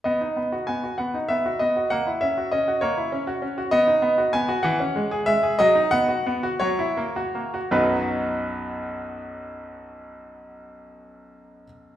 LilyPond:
\new Staff \with { instrumentName = "Grand piano" } { \time 6/8 \key b \major \tempo 4. = 62 << { dis''4 gis''8 fis''8 e''8 dis''8 | fis''8 e''8 dis''8 cis''4. | dis''4 gis''8 fis''4 e''8 | dis''8 fis''4 cis''4. |
<b,, fis, fis b dis' fis' b'>2.~ | <b,, fis, fis b dis' fis' b'>2. | } \\ { b16 dis'16 b16 fis'16 b16 fis'16 b16 dis'16 b16 fis'16 b16 fis'16 | ais16 e'16 cis'16 fis'16 cis'16 fis'16 ais16 e'16 cis'16 fis'16 cis'16 fis'16 | b16 dis'16 b16 fis'16 b16 fis'16 e16 cis'16 gis16 gis'16 gis16 gis'16 | fis16 dis'16 b16 fis'16 b16 fis'16 fis16 e'16 ais16 fis'16 ais16 fis'16 |
r2. | r2. | } >> }